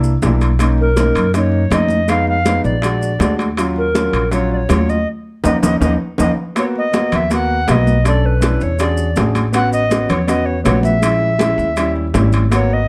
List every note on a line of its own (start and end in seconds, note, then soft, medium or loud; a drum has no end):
0.00 0.19 C2 medium
0.00 0.11 A#3 medium
0.00 0.11 D4 medium
0.00 0.12 E4 medium
0.00 high conga soft
0.00 maracas medium
0.04 high bongo soft
0.22 1.10 B1 medium
0.22 0.48 A#3 medium
0.22 0.49 D4 medium
0.22 0.49 E4 medium
0.22 high bongo medium
0.22 low bongo medium
0.22 high conga medium
0.22 high timbale medium
0.22 low timbale medium
0.22 maracas medium
0.41 high bongo soft
0.41 high timbale medium
0.41 maracas soft
0.59 0.86 A#3 medium
0.59 0.86 C#4 medium
0.59 0.87 D#4 medium
0.59 high bongo medium
0.59 high conga soft
0.59 high timbale medium
0.59 maracas medium
0.78 1.32 A#4 medium
0.78 high conga soft
0.96 1.23 A#3 medium
0.96 1.23 C#4 medium
0.96 1.24 D#4 medium
0.96 high bongo medium
0.96 high conga medium
0.96 high timbale medium
0.96 low timbale medium
0.96 maracas medium
1.15 1.67 F#2 medium
1.15 high conga soft
1.15 high timbale medium
1.15 maracas soft
1.34 1.60 A#3 medium
1.34 1.61 C#4 medium
1.34 1.61 D#4 medium
1.34 1.75 C#5 medium
1.34 high bongo medium
1.34 high conga soft
1.34 high timbale medium
1.34 maracas medium
1.52 high conga soft
1.70 2.59 F2 medium
1.70 1.98 A#3 medium
1.70 1.98 C#4 medium
1.70 1.99 D#4 medium
1.70 2.11 D#5 medium
1.70 high bongo medium
1.70 low bongo medium
1.70 high conga medium
1.70 high timbale medium
1.70 low timbale medium
1.70 maracas medium
1.89 high conga medium
1.89 maracas soft
2.08 2.34 G#3 medium
2.08 2.35 B3 medium
2.08 2.36 D#4 medium
2.08 2.28 F5 medium
2.08 high bongo medium
2.08 high conga soft
2.08 high timbale medium
2.08 maracas medium
2.27 2.63 F5 loud
2.27 high conga soft
2.45 2.72 G#3 medium
2.45 2.72 B3 medium
2.45 2.73 D#4 medium
2.45 high bongo medium
2.45 high conga medium
2.45 high timbale medium
2.45 low timbale medium
2.45 maracas medium
2.64 3.17 A#1 medium
2.64 3.35 D5 medium
2.64 high bongo soft
2.64 high conga soft
2.64 maracas soft
2.82 3.09 G#3 medium
2.82 3.09 D4 medium
2.82 3.10 F#4 medium
2.82 high bongo medium
2.82 high conga soft
2.82 high timbale medium
2.82 maracas medium
3.01 high bongo soft
3.01 high conga soft
3.01 maracas medium
3.19 4.07 D#2 medium
3.19 3.46 G#3 medium
3.19 3.46 D4 medium
3.19 3.47 F#4 medium
3.19 high bongo medium
3.19 low bongo medium
3.19 high conga medium
3.19 high timbale medium
3.19 low timbale medium
3.19 maracas medium
3.39 high bongo soft
3.39 high conga medium
3.39 high timbale medium
3.39 maracas soft
3.57 3.84 F#3 medium
3.57 3.84 C#4 medium
3.57 3.85 F4 medium
3.57 high bongo medium
3.57 high conga soft
3.57 high timbale medium
3.57 maracas medium
3.76 4.29 A#4 medium
3.76 high conga soft
3.94 4.21 F#3 medium
3.94 4.21 C#4 medium
3.94 4.22 F4 medium
3.94 high bongo medium
3.94 high conga medium
3.94 high timbale medium
3.94 low timbale soft
3.94 maracas medium
4.13 4.66 A#1 medium
4.13 high conga soft
4.13 high timbale medium
4.13 maracas soft
4.31 4.58 F#3 medium
4.31 4.58 C#4 medium
4.31 4.59 F4 medium
4.31 4.50 C#5 medium
4.31 high bongo medium
4.31 high conga soft
4.31 high timbale medium
4.31 maracas medium
4.51 4.57 D5 medium
4.51 high conga soft
4.56 4.91 C#5 medium
4.68 5.05 D#2 medium
4.68 4.95 F#3 medium
4.68 4.96 C#4 medium
4.68 4.96 F4 medium
4.68 high bongo medium
4.68 low bongo medium
4.68 high conga medium
4.68 high timbale medium
4.68 low timbale medium
4.68 maracas medium
4.89 5.08 D#5 medium
4.89 high conga medium
4.89 maracas soft
5.44 5.58 D#2 medium
5.44 5.56 A#3 medium
5.44 5.56 C#4 medium
5.44 5.56 D#4 medium
5.44 5.57 D#5 medium
5.44 low bongo loud
5.44 low conga medium
5.44 high timbale medium
5.44 maracas medium
5.63 5.77 D#2 medium
5.63 5.75 A#3 medium
5.63 5.75 C#4 medium
5.63 5.75 D#4 medium
5.63 5.76 D#5 medium
5.63 low bongo medium
5.63 low conga medium
5.63 high timbale medium
5.63 maracas medium
5.81 5.95 D#2 medium
5.81 5.93 A#3 medium
5.81 5.93 C#4 medium
5.81 5.93 D#4 medium
5.81 5.94 D#5 medium
5.81 low bongo medium
5.81 low conga medium
5.81 high timbale medium
5.81 maracas medium
6.18 6.33 D#2 medium
6.18 6.31 A#3 medium
6.18 6.31 C#4 medium
6.18 6.31 D#4 medium
6.18 6.31 D#5 medium
6.18 low bongo medium
6.18 low conga medium
6.18 high timbale medium
6.18 maracas medium
6.55 6.82 A#3 medium
6.55 6.82 B3 medium
6.55 6.83 F#4 medium
6.55 6.65 C#5 medium
6.55 high bongo medium
6.55 high conga soft
6.55 high timbale medium
6.55 maracas medium
6.76 7.17 D#5 loud
6.76 high conga soft
6.92 7.19 A#3 medium
6.92 7.19 B3 medium
6.92 7.20 F#4 medium
6.92 high bongo medium
6.92 high conga medium
6.92 high timbale medium
6.92 low timbale medium
6.92 maracas medium
7.12 7.64 D#2 medium
7.12 7.32 E5 medium
7.12 high conga soft
7.12 low conga medium
7.12 high timbale medium
7.12 maracas soft
7.30 7.57 A#3 medium
7.30 7.57 B3 medium
7.30 7.58 F#4 medium
7.30 7.72 F#5 loud
7.30 high bongo medium
7.30 high conga soft
7.30 high timbale medium
7.30 maracas medium
7.50 high conga soft
7.67 8.55 B1 medium
7.67 7.94 A#3 medium
7.67 7.94 B3 medium
7.67 7.95 F#4 medium
7.67 8.07 D#5 medium
7.67 high bongo medium
7.67 low bongo medium
7.67 high conga medium
7.67 high timbale loud
7.67 low timbale medium
7.67 maracas medium
7.87 high conga medium
7.87 maracas soft
8.04 8.31 C#4 medium
8.04 8.31 D4 medium
8.04 8.32 A4 medium
8.04 8.27 D5 medium
8.04 high bongo medium
8.04 high conga soft
8.04 high timbale medium
8.04 maracas medium
8.24 8.64 B4 medium
8.24 high conga soft
8.41 8.68 C#4 medium
8.41 8.68 D4 medium
8.41 8.69 E4 medium
8.41 high bongo medium
8.41 high conga medium
8.41 high timbale medium
8.41 low timbale medium
8.41 maracas medium
8.61 9.13 E2 medium
8.61 8.82 C#5 medium
8.61 high bongo soft
8.61 high conga soft
8.61 maracas soft
8.79 9.05 C#4 medium
8.79 9.06 D4 medium
8.79 9.06 F#4 medium
8.79 9.06 G#4 medium
8.79 9.18 D5 medium
8.79 high bongo medium
8.79 high conga soft
8.79 high timbale medium
8.79 maracas medium
8.97 high bongo soft
8.97 high conga soft
8.97 maracas medium
9.16 10.04 A1 medium
9.16 9.43 C#4 medium
9.16 9.43 D4 medium
9.16 9.43 F#4 medium
9.16 9.44 G#4 medium
9.16 high bongo medium
9.16 low bongo medium
9.16 high conga medium
9.16 high timbale medium
9.16 low timbale medium
9.16 maracas medium
9.35 high bongo soft
9.35 high conga medium
9.35 high timbale medium
9.35 maracas soft
9.53 9.79 B3 medium
9.53 9.80 C#4 medium
9.53 9.81 F#4 medium
9.53 9.72 F#5 loud
9.53 high bongo medium
9.53 high conga soft
9.53 high timbale medium
9.53 maracas medium
9.73 10.11 D#5 loud
9.73 high conga soft
9.73 maracas medium
9.89 10.17 B3 medium
9.89 10.17 C#4 medium
9.89 10.18 F#4 medium
9.89 high bongo medium
9.89 high conga medium
9.89 high timbale medium
9.89 low timbale medium
9.89 maracas medium
10.09 10.62 E2 medium
10.09 10.29 C#5 medium
10.09 high conga soft
10.09 low conga medium
10.09 high timbale medium
10.09 maracas soft
10.27 10.54 B3 medium
10.27 10.54 C#4 medium
10.27 10.55 F#4 medium
10.27 10.47 D#5 medium
10.27 high bongo medium
10.27 high conga soft
10.27 high timbale medium
10.27 maracas medium
10.45 10.63 C#5 medium
10.45 high conga soft
10.64 11.53 A#1 medium
10.64 10.91 B3 medium
10.64 10.92 C#4 medium
10.64 10.92 F#4 medium
10.64 10.82 C#5 medium
10.64 high bongo medium
10.64 low bongo medium
10.64 high conga medium
10.64 high timbale loud
10.64 low timbale medium
10.64 maracas medium
10.83 11.92 E5 medium
10.83 high conga medium
10.83 maracas soft
11.01 11.28 G#3 medium
11.01 11.29 C#4 medium
11.01 11.29 E4 medium
11.01 high bongo medium
11.01 high conga soft
11.01 high timbale medium
11.01 maracas medium
11.20 high conga soft
11.39 11.66 G#3 medium
11.39 11.66 C#4 medium
11.39 11.67 E4 loud
11.39 high bongo medium
11.39 high conga medium
11.39 high timbale medium
11.39 low timbale medium
11.39 maracas medium
11.58 12.10 D#2 medium
11.58 high bongo soft
11.58 high conga soft
11.58 maracas soft
11.76 12.03 G3 medium
11.76 12.04 C#4 medium
11.76 12.04 E4 medium
11.76 high bongo medium
11.76 high conga soft
11.76 high timbale medium
11.76 maracas medium
11.96 high bongo soft
11.96 high conga soft
12.13 12.88 G#1 loud
12.13 12.40 G3 medium
12.13 12.41 C#4 medium
12.13 12.41 E4 medium
12.13 high bongo medium
12.13 low bongo medium
12.13 high conga medium
12.13 high timbale medium
12.13 low timbale medium
12.13 maracas medium
12.32 high bongo soft
12.32 high conga medium
12.32 high timbale medium
12.32 maracas soft
12.50 12.77 A#3 medium
12.50 12.78 B3 medium
12.50 12.78 F#4 medium
12.50 high bongo medium
12.50 high timbale medium
12.50 maracas medium
12.54 12.74 C#5 medium
12.70 12.88 D#5 loud
12.70 high conga soft